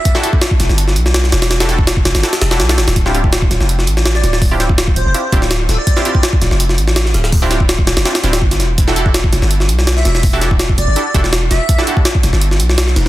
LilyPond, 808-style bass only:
\new Staff \with { instrumentName = "808-style bass" } { \clef bass \time 4/4 \key e \phrygian \tempo 4 = 165 r4. e,,16 g,,8. b,,4 e,,8~ | e,,4. e,,16 g,,16 r8 e,,8 b,,8 g,,16 d,,16~ | d,,4. d,,16 f,,8. a,,4 d,,8~ | d,,4. d,,16 f,,16 r8 d,,4 d,,16 r16 |
r4. d,,16 f,,8. a,,4 d,,8~ | d,,4. d,,16 f,,16 r8 d,,8 g,,8 e,,8~ | e,,4. e,,16 g,,8. b,,4 e,,8~ | e,,4. e,,16 g,,16 r8 e,,4 e,,16 r16 |
r4. e,,16 g,,8. b,,4 e,,8 | }